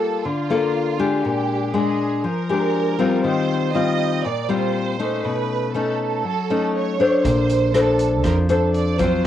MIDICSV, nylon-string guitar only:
0, 0, Header, 1, 2, 480
1, 0, Start_track
1, 0, Tempo, 500417
1, 1189, Time_signature, 4, 2, 24, 8
1, 8891, End_track
2, 0, Start_track
2, 0, Title_t, "Nylon-string guitar"
2, 0, Program_c, 0, 24
2, 0, Note_on_c, 0, 55, 56
2, 0, Note_on_c, 0, 58, 54
2, 0, Note_on_c, 0, 65, 59
2, 0, Note_on_c, 0, 69, 63
2, 207, Note_off_c, 0, 55, 0
2, 225, Note_off_c, 0, 58, 0
2, 228, Note_off_c, 0, 65, 0
2, 230, Note_off_c, 0, 69, 0
2, 240, Note_on_c, 0, 50, 52
2, 478, Note_on_c, 0, 58, 56
2, 484, Note_on_c, 0, 65, 58
2, 490, Note_on_c, 0, 69, 58
2, 915, Note_off_c, 0, 58, 0
2, 919, Note_off_c, 0, 65, 0
2, 920, Note_off_c, 0, 69, 0
2, 950, Note_on_c, 0, 56, 53
2, 955, Note_on_c, 0, 62, 51
2, 955, Note_on_c, 0, 67, 62
2, 1171, Note_off_c, 0, 50, 0
2, 1196, Note_on_c, 0, 46, 55
2, 1632, Note_off_c, 0, 56, 0
2, 1633, Note_off_c, 0, 62, 0
2, 1634, Note_off_c, 0, 67, 0
2, 1666, Note_on_c, 0, 56, 57
2, 1674, Note_on_c, 0, 62, 63
2, 2129, Note_off_c, 0, 46, 0
2, 2145, Note_off_c, 0, 56, 0
2, 2149, Note_off_c, 0, 62, 0
2, 2149, Note_on_c, 0, 53, 55
2, 2392, Note_on_c, 0, 56, 55
2, 2396, Note_on_c, 0, 62, 52
2, 2401, Note_on_c, 0, 67, 56
2, 2833, Note_off_c, 0, 56, 0
2, 2835, Note_off_c, 0, 62, 0
2, 2836, Note_off_c, 0, 67, 0
2, 2865, Note_on_c, 0, 55, 64
2, 2870, Note_on_c, 0, 60, 65
2, 2878, Note_on_c, 0, 65, 57
2, 3085, Note_off_c, 0, 53, 0
2, 3108, Note_on_c, 0, 51, 58
2, 3549, Note_off_c, 0, 55, 0
2, 3552, Note_off_c, 0, 60, 0
2, 3555, Note_off_c, 0, 65, 0
2, 3591, Note_on_c, 0, 55, 57
2, 3597, Note_on_c, 0, 60, 52
2, 3601, Note_on_c, 0, 65, 64
2, 4045, Note_off_c, 0, 51, 0
2, 4067, Note_off_c, 0, 55, 0
2, 4071, Note_off_c, 0, 60, 0
2, 4071, Note_off_c, 0, 65, 0
2, 4072, Note_on_c, 0, 46, 53
2, 4304, Note_on_c, 0, 55, 60
2, 4311, Note_on_c, 0, 60, 58
2, 4316, Note_on_c, 0, 65, 62
2, 4748, Note_off_c, 0, 55, 0
2, 4752, Note_off_c, 0, 60, 0
2, 4753, Note_off_c, 0, 65, 0
2, 4792, Note_on_c, 0, 57, 61
2, 4794, Note_on_c, 0, 61, 53
2, 4797, Note_on_c, 0, 63, 61
2, 5007, Note_off_c, 0, 46, 0
2, 5031, Note_on_c, 0, 47, 60
2, 5473, Note_off_c, 0, 57, 0
2, 5473, Note_off_c, 0, 61, 0
2, 5475, Note_off_c, 0, 63, 0
2, 5510, Note_on_c, 0, 57, 54
2, 5517, Note_on_c, 0, 61, 54
2, 5523, Note_on_c, 0, 63, 61
2, 5966, Note_off_c, 0, 47, 0
2, 5987, Note_off_c, 0, 57, 0
2, 5989, Note_on_c, 0, 54, 52
2, 5990, Note_off_c, 0, 61, 0
2, 5993, Note_off_c, 0, 63, 0
2, 6237, Note_on_c, 0, 57, 53
2, 6240, Note_on_c, 0, 61, 57
2, 6246, Note_on_c, 0, 63, 58
2, 6675, Note_off_c, 0, 57, 0
2, 6677, Note_off_c, 0, 61, 0
2, 6678, Note_off_c, 0, 63, 0
2, 6712, Note_on_c, 0, 62, 58
2, 6715, Note_on_c, 0, 69, 60
2, 6722, Note_on_c, 0, 72, 63
2, 6925, Note_off_c, 0, 54, 0
2, 6953, Note_on_c, 0, 58, 56
2, 7392, Note_off_c, 0, 62, 0
2, 7392, Note_off_c, 0, 69, 0
2, 7397, Note_off_c, 0, 72, 0
2, 7426, Note_on_c, 0, 62, 58
2, 7431, Note_on_c, 0, 69, 53
2, 7435, Note_on_c, 0, 72, 56
2, 7886, Note_off_c, 0, 58, 0
2, 7904, Note_on_c, 0, 53, 52
2, 8108, Note_off_c, 0, 62, 0
2, 8111, Note_off_c, 0, 69, 0
2, 8113, Note_off_c, 0, 72, 0
2, 8146, Note_on_c, 0, 62, 50
2, 8150, Note_on_c, 0, 69, 51
2, 8156, Note_on_c, 0, 72, 60
2, 8589, Note_off_c, 0, 62, 0
2, 8590, Note_off_c, 0, 69, 0
2, 8593, Note_off_c, 0, 72, 0
2, 8617, Note_on_c, 0, 54, 57
2, 8625, Note_on_c, 0, 60, 53
2, 8627, Note_on_c, 0, 65, 64
2, 8842, Note_off_c, 0, 53, 0
2, 8891, Note_off_c, 0, 54, 0
2, 8891, Note_off_c, 0, 60, 0
2, 8891, Note_off_c, 0, 65, 0
2, 8891, End_track
0, 0, End_of_file